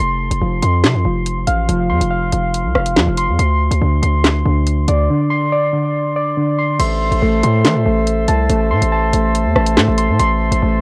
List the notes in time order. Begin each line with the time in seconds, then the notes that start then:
0.00 F1 C6
0.31 F1, closed hi-hat
0.41 F1 F3
0.62 F2 C6, closed hi-hat
0.84 C3, snare, clap, closed hi-hat
0.94 F2
1.05 F1 F3
1.26 closed hi-hat
1.47 A1 F5, closed hi-hat
1.69 F1 F3, closed hi-hat
1.90 F2 C6
2.01 F1, closed hi-hat
2.11 F5
2.33 F1 F3, closed hi-hat
2.54 closed hi-hat
2.65 C2
2.75 F1 F5, cross-stick
2.86 closed hi-hat
2.96 F2 F3, snare, clap
3.07 F1
3.17 C6, closed hi-hat
3.28 F2
3.39 D2 C6, closed hi-hat
3.71 D2, closed hi-hat
3.81 D2 D3
4.02 D2 C6, closed hi-hat
4.24 snare, clap, closed hi-hat
4.45 D2 D3
4.67 closed hi-hat
4.88 D2 D5, closed hi-hat
5.10 D3
5.30 C6
5.52 D5
5.73 D3
6.16 D5
6.37 D3
6.58 C6
6.79 A1 A3 A4 C5 E5 C6, closed hi-hat, crash
7.11 A1, closed hi-hat
7.22 A1 A3
7.43 A2 C6, closed hi-hat
7.65 E3, snare, clap, closed hi-hat
7.75 A2
7.86 A1 A3
8.07 closed hi-hat
8.28 C2 A5, closed hi-hat
8.50 A1 A3, closed hi-hat
8.71 A2 C6
8.82 A1, closed hi-hat
8.92 A5
9.13 A1 A3, closed hi-hat
9.35 closed hi-hat
9.45 E2
9.56 A1 A5, cross-stick
9.67 closed hi-hat
9.77 A2 A3, snare, clap
9.88 A1
9.98 C6, closed hi-hat
10.09 A2
10.20 A1 C6, closed hi-hat
10.52 A1, closed hi-hat
10.62 A1 A3